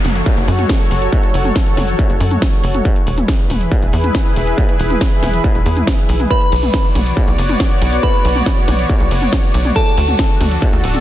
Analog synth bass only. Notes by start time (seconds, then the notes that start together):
0.05 F#1
0.37 F#1
0.48 F#2
0.91 F#1
1.34 F#1
1.77 F#1
2.10 F#1
2.20 F#2
2.64 F#1
3.07 E1
3.50 E1
3.82 E1
3.93 E2
4.36 E1
4.79 E1
5.23 E1
5.55 E1
5.66 E2
6.09 B1
6.52 B1
6.95 B1
7.28 B1
7.38 F#1
7.82 B1
8.25 B1
8.68 B1
9.00 B1
9.11 F#1
9.54 B1
9.97 D2
10.41 D2
10.73 D2
10.84 D1